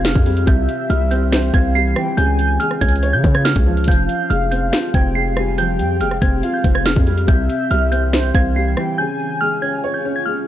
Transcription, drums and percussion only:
0.05 snare loud
0.15 kick loud
0.26 open hi-hat medium
0.37 closed hi-hat medium
0.47 kick loud
0.47 closed hi-hat medium
0.69 closed hi-hat medium
0.90 closed hi-hat medium
1.11 closed hi-hat medium
1.32 snare loud
1.32 closed hi-hat medium
1.54 kick loud
1.54 closed hi-hat medium
1.96 cross-stick loud
2.18 closed hi-hat medium
2.39 closed hi-hat medium
2.60 closed hi-hat medium
2.71 cross-stick medium
2.81 kick medium
2.81 closed hi-hat medium
2.88 closed hi-hat medium
2.96 closed hi-hat medium
3.03 closed hi-hat medium
3.24 kick loud
3.24 closed hi-hat medium
3.35 cross-stick loud
3.45 snare loud
3.56 kick loud
3.77 closed hi-hat soft
3.84 kick loud
3.84 closed hi-hat medium
3.91 closed hi-hat medium
4.09 closed hi-hat medium
4.30 closed hi-hat medium
4.52 closed hi-hat medium
4.73 snare loud
4.73 closed hi-hat medium
4.94 kick loud
4.94 closed hi-hat medium
5.37 cross-stick loud
5.58 closed hi-hat medium
5.79 closed hi-hat medium
6.01 closed hi-hat medium
6.11 cross-stick medium
6.22 kick loud
6.22 closed hi-hat medium
6.43 closed hi-hat medium
6.64 kick loud
6.64 closed hi-hat medium
6.75 cross-stick loud
6.86 snare loud
6.96 kick loud
7.07 open hi-hat medium
7.18 closed hi-hat medium
7.28 kick loud
7.28 closed hi-hat medium
7.50 closed hi-hat medium
7.71 closed hi-hat medium
7.92 closed hi-hat medium
8.13 snare loud
8.13 closed hi-hat medium
8.35 kick loud
8.35 closed hi-hat medium
8.77 cross-stick loud

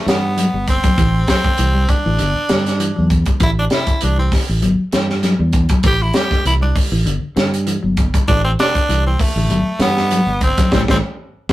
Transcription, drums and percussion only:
0.08 snare medium
0.08 closed hi-hat medium
0.38 closed hi-hat medium
0.67 kick medium
0.67 closed hi-hat medium
0.84 kick medium
0.84 closed hi-hat medium
0.98 kick medium
0.98 closed hi-hat medium
1.28 kick medium
1.28 snare medium
1.28 closed hi-hat medium
1.44 kick medium
1.57 closed hi-hat medium
1.89 kick medium
1.89 closed hi-hat soft
2.19 closed hi-hat medium
2.49 snare medium
2.49 closed hi-hat soft
2.66 snare soft
2.66 closed hi-hat soft
2.80 closed hi-hat medium
3.10 kick medium
3.10 closed hi-hat soft
3.26 kick medium
3.26 closed hi-hat soft
3.40 kick medium
3.40 closed hi-hat medium
3.70 snare medium
3.70 closed hi-hat soft
3.87 kick medium
3.87 closed hi-hat soft
4.01 closed hi-hat medium
4.32 kick medium
4.32 snare soft
4.32 open hi-hat medium
4.62 closed hi-hat medium
4.92 snare medium
4.92 closed hi-hat medium
5.10 snare soft
5.23 snare soft
5.23 closed hi-hat medium
5.53 kick medium
5.53 closed hi-hat soft
5.69 kick medium
5.69 closed hi-hat medium
5.83 kick medium
5.83 closed hi-hat medium
6.14 snare medium
6.14 closed hi-hat medium
6.31 kick medium
6.31 snare soft
6.45 closed hi-hat medium
6.76 kick medium
6.76 open hi-hat medium
7.07 closed hi-hat medium
7.37 snare medium
7.37 closed hi-hat soft
7.54 closed hi-hat medium
7.67 closed hi-hat medium
7.97 kick medium
7.97 closed hi-hat soft
8.14 kick medium
8.14 closed hi-hat soft
8.28 kick medium
8.28 closed hi-hat medium
8.59 snare medium
8.59 closed hi-hat soft
8.75 kick medium
8.75 closed hi-hat soft
8.90 closed hi-hat medium
9.19 kick medium
9.19 open hi-hat medium
9.50 closed hi-hat medium
9.80 snare medium
9.80 closed hi-hat medium
9.97 snare soft
10.11 closed hi-hat medium
10.41 kick medium
10.41 closed hi-hat soft
10.58 kick medium
10.58 snare soft
10.58 closed hi-hat medium
10.72 kick medium
10.72 snare medium
10.88 kick medium
10.88 snare medium
11.49 kick medium
11.49 snare medium

